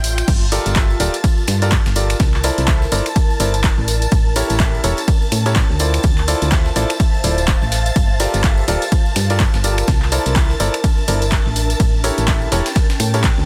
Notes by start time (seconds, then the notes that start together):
Already playing: A1 F4 E5 G5 C6 G6
0.04 closed hi-hat, open hi-hat, tambourine
0.18 finger snap, closed hi-hat, tambourine
0.28 G1 A5 A6, kick, closed hi-hat, ride, tambourine, crash
0.52 F4 G4 A4 A#4 D5, closed hi-hat, open hi-hat, tambourine
0.66 G1, snare, closed hi-hat, tambourine
0.71 A#4
0.76 F4 A4 E5, kick, snare, clap, closed hi-hat, ride, tambourine
0.90 tambourine
1.00 D1 F4 G4 A4 A#4 D5, snare, closed hi-hat, open hi-hat, tambourine
1.14 A5, closed hi-hat, tambourine
1.24 kick, closed hi-hat, ride, tambourine
1.38 tambourine
1.47 G2, finger snap, snare, closed hi-hat, open hi-hat, tambourine
1.62 F4 G4 A4 A#4 D5, snare, closed hi-hat, tambourine
1.72 kick, clap, closed hi-hat, ride, tambourine
1.86 G1, snare, closed hi-hat
1.96 F4 G4 A4 A#4 D5, open hi-hat, tambourine
2.10 finger snap, closed hi-hat, tambourine
2.19 C2 E4, kick, snare, closed hi-hat, ride, tambourine
2.34 snare, clap
2.44 E4 A4 A#4 C5 D5, closed hi-hat, open hi-hat, tambourine
2.58 C2, snare, closed hi-hat, tambourine
2.67 E4 A4 A#4 C5 E5, kick, snare, clap, closed hi-hat, ride, tambourine
2.82 snare, tambourine
2.92 G1 E4 A4 A#4 C5 D5, closed hi-hat, open hi-hat, tambourine
3.06 finger snap, closed hi-hat, tambourine
3.16 kick, closed hi-hat, ride, tambourine
3.30 tambourine
3.40 G1 E4 A4 A#4 C5 D5, closed hi-hat, open hi-hat, tambourine
3.54 closed hi-hat, tambourine
3.64 kick, snare, clap, closed hi-hat, ride, tambourine
3.78 A1, snare
3.88 C#4, closed hi-hat, open hi-hat, tambourine
4.02 closed hi-hat, tambourine
4.11 A1, kick, closed hi-hat, ride, tambourine
4.36 E4 G4 A4 A#4 C#5, closed hi-hat, open hi-hat, tambourine
4.49 A1, snare, closed hi-hat, tambourine
4.60 E4 G4 A4 A#4 E5, kick, snare, clap, closed hi-hat, ride, tambourine
4.75 G5, tambourine
4.84 E1 E4 G4 A4 A#4 C#5, snare, closed hi-hat, open hi-hat, tambourine
4.97 closed hi-hat, tambourine
5.08 kick, closed hi-hat, ride, tambourine
5.22 tambourine
5.32 A2, finger snap, closed hi-hat, open hi-hat, tambourine
5.46 E4 G4 A4 A#4 C#5, snare, closed hi-hat, tambourine
5.56 kick, snare, clap, closed hi-hat, ride, tambourine
5.70 D2, snare
5.79 E4 F4 A4 C5 D5 E5, closed hi-hat, open hi-hat, tambourine
5.94 finger snap, closed hi-hat, tambourine
6.03 D2, kick, closed hi-hat, ride, tambourine
6.07 C5
6.18 clap, closed hi-hat
6.28 E4 F4 A4 C5 D5, closed hi-hat, open hi-hat, tambourine
6.32 F5
6.42 D2, snare, closed hi-hat, tambourine
6.51 E4 F4 A4 C5 E5, kick, snare, clap, closed hi-hat, ride, tambourine
6.65 snare, tambourine
6.76 A1 E4 F4 A4 C5 D5, closed hi-hat, open hi-hat, tambourine
6.90 finger snap, closed hi-hat, tambourine
7.00 kick, closed hi-hat, ride, tambourine
7.14 tambourine
7.24 D1 E4 F4 A4 C5 D5, closed hi-hat, open hi-hat, tambourine
7.38 closed hi-hat, tambourine
7.48 kick, snare, clap, closed hi-hat, ride, tambourine
7.62 A1, snare, tambourine
7.72 snare, closed hi-hat, open hi-hat, tambourine
7.86 closed hi-hat, tambourine
7.96 G1 F4, kick, closed hi-hat, ride, tambourine
8.14 A#4
8.20 F4 G4 A4 A#4 D5, closed hi-hat, open hi-hat, tambourine
8.33 G1, snare, closed hi-hat, tambourine
8.44 F4 G4 A4 A#4 E5, kick, snare, clap, closed hi-hat, ride, tambourine
8.57 tambourine
8.68 D1 F4 G4 A4 A#4 D5, snare, closed hi-hat, open hi-hat, tambourine
8.82 A5, closed hi-hat, tambourine
8.92 kick, closed hi-hat, ride, tambourine
9.06 tambourine
9.16 G2, finger snap, snare, closed hi-hat, open hi-hat, tambourine
9.30 F4 G4 A4 A#4 D5, snare, closed hi-hat, tambourine
9.40 kick, clap, closed hi-hat, ride, tambourine
9.54 G1, snare, closed hi-hat
9.64 F4 G4 A4 A#4 D5, open hi-hat, tambourine
9.78 finger snap, closed hi-hat, tambourine
9.87 C2 D4, kick, snare, closed hi-hat, ride, tambourine
10.02 snare, clap
10.12 E4 A4 A#4 C5 D5, closed hi-hat, open hi-hat, tambourine
10.21 E5
10.26 C2, snare, closed hi-hat, tambourine
10.36 E4 A4 A#4 C5 E5, kick, snare, clap, closed hi-hat, ride, tambourine
10.50 snare, tambourine
10.60 G1 E4 A4 A#4 C5 D5, closed hi-hat, open hi-hat, tambourine
10.74 finger snap, closed hi-hat, tambourine
10.84 kick, closed hi-hat, ride, tambourine
10.98 tambourine
11.08 G1 E4 A4 A#4 C5 D5, closed hi-hat, open hi-hat, tambourine
11.22 closed hi-hat, tambourine
11.31 kick, snare, clap, closed hi-hat, ride, tambourine
11.46 A1, snare
11.56 C#4, closed hi-hat, open hi-hat, tambourine
11.70 closed hi-hat, tambourine
11.76 G5
11.80 A1, kick, closed hi-hat, ride, tambourine
12.04 E4 G4 A4 A#4 C#5, closed hi-hat, open hi-hat, tambourine
12.18 A1, snare, closed hi-hat, tambourine
12.28 E4 A4 A#4 E5, kick, snare, clap, closed hi-hat, ride, tambourine
12.42 tambourine
12.52 E1 E4 G4 A4 A#4 C#5, snare, closed hi-hat, open hi-hat, tambourine
12.66 snare, closed hi-hat, tambourine
12.75 kick, snare, closed hi-hat, ride, tambourine
12.90 snare, closed hi-hat, tambourine
13.00 A2, finger snap, closed hi-hat, open hi-hat, tambourine
13.14 E4 G4 A4 A#4 C#5, snare, closed hi-hat, tambourine
13.23 kick, snare, clap, closed hi-hat, ride, tambourine
13.38 D2, snare